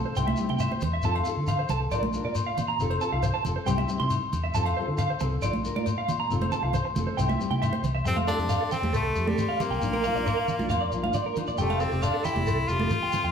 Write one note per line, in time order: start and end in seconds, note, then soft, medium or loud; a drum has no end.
0.05 0.14 C5 medium
0.16 0.33 C2 medium
0.16 0.29 G3 medium
0.16 0.30 C4 medium
0.16 0.31 E4 medium
0.16 0.26 G5 medium
0.16 low agogo medium
0.16 shekere medium
0.27 0.36 E5 medium
0.27 high conga medium
0.37 0.49 G3 medium
0.37 0.50 C4 medium
0.37 shekere medium
0.41 0.49 E4 medium
0.49 0.65 C3 medium
0.49 0.63 E4 medium
0.49 0.58 G5 medium
0.49 high conga medium
0.54 0.64 C4 soft
0.59 0.69 E5 medium
0.59 low agogo medium
0.59 shekere medium
0.71 0.81 C5 medium
0.71 high conga medium
0.81 0.99 E2 medium
0.81 low conga medium
0.81 low agogo medium
0.81 shekere medium
0.93 1.02 E5 medium
1.02 1.20 F2 medium
1.02 1.17 C4 medium
1.02 1.18 F4 medium
1.02 1.18 A4 medium
1.02 1.14 A5 medium
1.02 shekere medium
1.15 1.24 F5 medium
1.15 low agogo medium
1.25 1.36 C4 medium
1.25 1.37 F4 medium
1.25 1.35 A4 medium
1.25 shekere medium
1.36 1.62 D3 medium
1.36 1.49 A4 medium
1.47 1.57 F5 medium
1.47 low conga medium
1.47 low agogo medium
1.47 shekere medium
1.59 1.68 C5 medium
1.69 1.86 C2 medium
1.69 1.84 A4 medium
1.69 1.79 A5 medium
1.69 muted nylon-string guitar stroke medium
1.69 low conga medium
1.69 shekere medium
1.91 2.16 A#1 loud
1.91 2.05 D4 medium
1.91 2.06 F4 medium
1.91 2.06 A#4 medium
1.91 2.01 D5 medium
1.91 low agogo medium
1.91 shekere medium
2.03 high conga medium
2.13 2.25 D4 medium
2.13 2.26 F4 medium
2.13 2.24 A#4 medium
2.13 shekere medium
2.24 2.49 A#2 medium
2.24 2.40 F4 soft
2.24 2.38 A#4 medium
2.24 2.34 D5 medium
2.35 low agogo medium
2.35 shekere medium
2.46 2.55 F5 medium
2.57 2.80 A#2 medium
2.57 low conga medium
2.57 low agogo medium
2.57 shekere medium
2.68 2.77 A#5 medium
2.79 2.96 F1 loud
2.79 2.93 C4 medium
2.79 2.93 F4 medium
2.79 2.94 A4 medium
2.79 shekere medium
2.90 2.99 C5 medium
2.90 low agogo medium
3.00 3.12 C4 medium
3.00 3.13 F4 medium
3.00 3.11 A4 medium
3.00 3.10 A5 medium
3.00 shekere medium
3.12 3.29 C2 medium
3.12 3.27 F4 soft
3.12 3.25 A4 medium
3.12 3.21 F5 medium
3.23 3.32 C5 medium
3.23 low conga medium
3.23 low agogo medium
3.23 shekere loud
3.34 3.43 A5 medium
3.45 3.54 F1 medium
3.45 3.58 C4 medium
3.45 3.59 F4 medium
3.45 3.60 A4 medium
3.45 low conga medium
3.45 shekere medium
3.56 3.65 C5 medium
3.66 3.84 C2 medium
3.66 3.80 G3 medium
3.66 3.80 C4 medium
3.66 3.81 E4 medium
3.66 3.76 G5 medium
3.66 low agogo medium
3.66 shekere medium
3.78 3.87 E5 medium
3.78 high conga medium
3.89 4.00 G3 medium
3.89 4.01 C4 medium
3.89 3.98 E4 medium
3.89 shekere medium
4.00 4.17 C3 medium
4.00 4.14 C4 soft
4.00 4.13 E4 medium
4.00 4.09 C6 medium
4.00 high conga medium
4.10 low agogo medium
4.10 shekere loud
4.33 4.50 E2 medium
4.33 low conga medium
4.33 low agogo medium
4.33 shekere medium
4.44 4.53 E5 medium
4.54 4.71 F2 medium
4.54 4.68 C4 medium
4.54 4.69 F4 medium
4.54 4.69 A4 medium
4.54 4.64 A5 medium
4.54 shekere loud
4.66 4.75 F5 medium
4.66 low agogo medium
4.77 4.88 C4 medium
4.77 4.89 F4 medium
4.77 4.87 A4 medium
4.77 4.86 C5 medium
4.87 5.12 D3 medium
4.87 5.01 A4 medium
4.92 5.03 F4 medium
4.98 5.08 F5 medium
4.98 low conga medium
4.98 low agogo medium
4.98 shekere loud
5.10 5.19 C5 medium
5.20 5.37 C2 medium
5.20 5.34 C4 medium
5.20 5.35 A4 medium
5.20 muted clean electric guitar stroke medium
5.20 low conga medium
5.20 shekere medium
5.42 5.67 A#1 loud
5.42 5.55 D4 medium
5.42 5.56 F4 medium
5.42 5.52 D5 medium
5.42 muted nylon-string guitar stroke medium
5.42 low agogo medium
5.42 shekere loud
5.53 high conga medium
5.62 5.75 D4 medium
5.62 5.76 F4 medium
5.62 5.74 A#4 medium
5.62 shekere medium
5.75 6.00 A#2 medium
5.75 5.90 F4 medium
5.75 5.88 A#4 medium
5.75 5.85 D5 medium
5.75 high conga medium
5.86 low agogo medium
5.86 shekere medium
5.98 6.07 F5 medium
6.08 6.32 A#2 medium
6.08 low conga medium
6.08 low agogo medium
6.08 shekere medium
6.20 6.29 A#5 medium
6.30 6.47 F1 medium
6.30 6.43 C4 medium
6.30 6.44 F4 medium
6.30 6.45 A4 medium
6.30 shekere medium
6.41 6.51 C5 medium
6.41 high conga medium
6.41 low agogo medium
6.51 6.63 C4 medium
6.51 6.64 F4 medium
6.51 6.61 A4 medium
6.51 6.61 A5 medium
6.51 low conga medium
6.51 shekere medium
6.62 6.80 C2 medium
6.62 6.77 F4 medium
6.62 6.76 A4 medium
6.62 6.72 F5 medium
6.73 6.83 C5 medium
6.73 low conga medium
6.73 low agogo medium
6.73 shekere medium
6.85 muted clean electric guitar stroke medium
6.95 7.04 F1 medium
6.95 7.09 C4 medium
6.95 7.10 F4 medium
6.95 7.11 A4 medium
6.95 high conga medium
6.95 low conga medium
6.95 shekere medium
7.07 7.16 C5 medium
7.17 7.34 C2 medium
7.17 7.31 G3 medium
7.17 7.31 C4 medium
7.17 7.32 E4 medium
7.17 7.27 G5 medium
7.17 low agogo medium
7.17 shekere medium
7.29 7.38 E5 medium
7.29 high conga medium
7.39 7.51 G3 medium
7.39 7.51 C4 medium
7.39 7.49 E4 medium
7.39 shekere medium
7.50 7.67 C3 medium
7.50 7.66 C4 soft
7.50 7.64 E4 medium
7.50 7.60 G5 medium
7.50 high conga medium
7.62 7.71 E5 medium
7.62 low agogo medium
7.62 shekere medium
7.73 7.82 C5 medium
7.73 high conga medium
7.83 8.00 C2 medium
7.83 low conga medium
7.83 low agogo medium
7.83 shekere medium
7.95 8.04 E5 medium
8.05 8.30 F2 medium
8.05 8.19 F3 medium
8.05 8.19 A3 medium
8.05 8.19 C4 medium
8.05 8.17 C4 medium
8.05 8.20 G4 medium
8.05 muted clean electric guitar stroke medium
8.05 shekere medium
8.16 8.26 F5 medium
8.16 high conga medium
8.16 low agogo medium
8.26 8.38 F3 medium
8.26 8.39 A3 medium
8.26 8.37 C4 medium
8.26 8.69 D4 loud
8.26 8.35 G4 medium
8.26 8.37 A4 medium
8.26 shekere medium
8.37 8.55 F2 medium
8.37 8.53 A3 soft
8.37 8.52 C4 soft
8.37 8.51 G4 medium
8.37 shekere soft
8.49 8.59 F5 medium
8.49 low agogo medium
8.49 shekere loud
8.61 8.70 A4 medium
8.71 8.93 C4 medium
8.71 8.81 G5 medium
8.71 low conga medium
8.71 shekere medium
8.82 8.93 F2 medium
8.82 8.96 C4 soft
8.82 8.96 G4 medium
8.82 high conga medium
8.82 shekere soft
8.93 9.10 C2 medium
8.93 9.30 A3 medium
8.93 9.03 A4 medium
8.93 low agogo medium
8.93 shekere medium
9.15 9.32 F2 medium
9.15 9.27 F3 medium
9.15 9.27 A3 medium
9.15 9.27 C4 medium
9.15 9.25 G4 medium
9.15 shekere medium
9.26 9.63 G3 medium
9.26 9.41 C4 soft
9.26 9.40 G4 medium
9.26 9.36 A4 medium
9.26 high conga medium
9.38 low conga medium
9.38 low agogo medium
9.38 shekere medium
9.49 9.58 F5 medium
9.60 9.73 F3 medium
9.60 9.74 A3 medium
9.60 11.37 A#3 loud
9.60 9.74 C4 medium
9.60 9.75 G4 medium
9.60 low conga medium
9.60 low agogo medium
9.60 shekere medium
9.71 9.79 B1 medium
9.71 9.80 G5 medium
9.71 shekere soft
9.81 10.07 A#1 medium
9.81 9.95 F3 medium
9.81 9.95 A#3 medium
9.81 9.96 D4 medium
9.81 9.96 F4 medium
9.81 shekere medium
9.93 10.02 A#4 medium
9.93 high conga medium
9.93 low agogo medium
10.04 10.15 F3 medium
10.04 10.16 A#3 medium
10.04 10.15 D4 medium
10.04 10.13 F4 medium
10.04 10.13 F5 medium
10.04 shekere medium
10.15 10.31 A#1 medium
10.15 10.30 A#3 soft
10.15 10.29 D4 medium
10.15 10.28 F4 medium
10.15 10.24 D5 medium
10.15 shekere soft
10.26 10.35 A#4 medium
10.26 low agogo medium
10.26 shekere medium
10.37 10.46 F5 medium
10.48 low conga medium
10.48 shekere medium
10.58 10.71 A#1 medium
10.58 10.74 A#3 soft
10.58 10.73 D4 medium
10.58 10.72 F4 medium
10.58 10.68 F4 medium
10.58 high conga medium
10.58 shekere soft
10.69 10.86 F2 loud
10.69 10.79 F5 medium
10.69 low agogo medium
10.69 shekere medium
10.81 10.90 D5 medium
10.92 11.09 A#1 medium
10.92 11.03 F3 medium
10.92 11.04 A#3 medium
10.92 11.03 D4 medium
10.92 11.01 F4 medium
10.92 shekere medium
11.02 11.17 D4 soft
11.02 11.16 F4 medium
11.02 11.12 F5 medium
11.02 muted nylon-string guitar stroke soft
11.02 high conga medium
11.13 11.23 D5 medium
11.13 low conga medium
11.13 low agogo medium
11.13 shekere medium
11.26 11.35 A#4 medium
11.35 11.49 F3 medium
11.35 11.50 D4 medium
11.35 11.51 F4 medium
11.35 muted nylon-string guitar stroke medium
11.35 low conga medium
11.35 low agogo medium
11.35 shekere medium
11.47 11.56 A#2 medium
11.47 11.57 D5 medium
11.47 shekere soft
11.58 11.83 F1 medium
11.58 11.72 F3 medium
11.58 11.82 A3 medium
11.58 11.72 A3 medium
11.58 11.73 C4 medium
11.58 11.73 G4 medium
11.58 11.67 G5 medium
11.58 shekere medium
11.70 11.79 F5 medium
11.70 high conga medium
11.70 low agogo medium
11.80 11.91 F3 medium
11.80 11.92 A3 medium
11.80 12.04 C4 medium
11.80 11.92 C4 medium
11.80 11.90 G4 medium
11.80 11.90 A4 medium
11.80 shekere medium
11.91 12.08 F1 medium
11.91 12.06 A3 soft
11.91 12.05 C4 soft
11.91 12.05 G4 medium
11.91 shekere soft
12.02 12.26 D4 medium
12.02 12.12 F5 medium
12.02 low agogo medium
12.02 shekere medium
12.14 12.23 A4 medium
12.24 12.70 E4 medium
12.24 12.34 G5 medium
12.24 low conga medium
12.24 shekere medium
12.34 12.48 F1 medium
12.34 12.50 A3 soft
12.34 12.49 C4 soft
12.34 12.48 G4 soft
12.34 high conga medium
12.34 shekere soft
12.46 12.63 C2 loud
12.46 12.56 A4 medium
12.46 low agogo medium
12.46 shekere medium
12.67 12.85 F1 medium
12.67 12.79 F3 medium
12.67 12.80 A3 medium
12.67 12.80 C4 medium
12.67 13.32 F4 loud
12.67 12.79 G4 medium
12.67 shekere medium
12.80 12.95 A3 soft
12.80 12.94 C4 soft
12.80 12.93 G4 medium
12.80 12.89 A4 medium
12.80 high conga medium
12.90 low conga medium
12.90 low agogo medium
12.90 shekere medium
13.03 13.11 G5 medium
13.12 13.26 F3 medium
13.12 13.27 A3 medium
13.12 13.27 C4 medium
13.12 low conga medium
13.12 low agogo medium
13.12 shekere medium
13.24 13.32 F2 medium
13.24 13.32 G5 medium
13.24 shekere soft